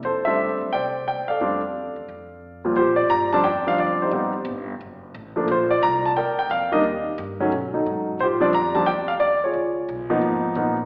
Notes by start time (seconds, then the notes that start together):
0.03 F2 A4 C5
0.25 G3 A3 C4 D4 A4 C5 E5
0.49 A2
0.61 F#2
0.72 C2 C5 D5 G5
1.08 G5
1.28 A4 D5 F5, muted upright bass stroke
1.40 F2 G3 A3 C4 D4
1.96 E2
2.08 F2
2.64 A#2 F3 G3 C4 F4
2.75 A#2 F4 G4 C5
2.96 D5
3.09 G2 A#5
3.33 F3 G3 C4 D4 A5
3.43 F2 D5 G5
3.66 F3 G3 C4 D4 F5
3.78 D2 D5
4.02 D#4 G4 C5
4.11 A1 G3 B3 C4 D#4
4.45 G1
4.81 F#1
5.14 A1
5.36 F3 A3 A#3 D4
5.48 A#1 F4 C5
5.71 D5
5.82 C2 A#5
6.06 A5
6.16 D2 A#4 D5 G5
6.39 G5
6.50 F2 F5
6.72 D#3 G3 A#3 D4 G4 A#4 D#5
6.84 D#2
7.18 G2
7.40 D#3 F#3 A3 C#4
7.52 B2
7.74 D#3 F#3 D#4 A4
7.86 G#2
8.19 A#2 F4 G4 C5
8.40 F3 G3 C4 D4 D5
8.53 F2 A#5
8.75 F3 G3 C4 D4 A5
8.86 D2 D5 G5
9.08 F5
9.20 D#2 D5
9.44 F4 G#4 C#5
9.53 C#2
9.88 B1
10.10 F3 A#3 B3 D#4
10.21 G#1
10.55 A#1 F3 A#3 B3 D#4